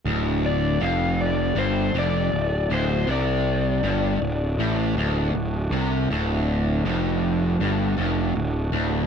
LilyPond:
<<
  \new Staff \with { instrumentName = "Electric slide guitar" } { \time 4/4 \key d \major \tempo 4 = 80 r8 d''8 f''8 d''8 c''8 d''4 c''8 | d''2. r4 | r1 | }
  \new Staff \with { instrumentName = "Tonewheel organ" } { \time 4/4 \key d \major <d' fis' a'>1 | <a d' fis'>1 | <a d' fis'>1 | }
  \new Staff \with { instrumentName = "Distorted electric guitar" } { \clef bass \time 4/4 \key d \major d,4 f,4 g,8 f,8 d,8 d,8 | c4 g,8 d,8 a,8 d,8 d,8 c8 | d,4 f,4 g,8 f,8 d,8 d,8 | }
  \new Staff \with { instrumentName = "Picked electric bass" } { \clef bass \time 4/4 \key d \major d,,4 f,,4 g,,8 f,,8 d,,8 d,,8 | c,4 g,,8 d,,8 a,,8 d,,8 d,,8 c,8 | d,,4 f,,4 g,,8 f,,8 d,,8 d,,8 | }
>>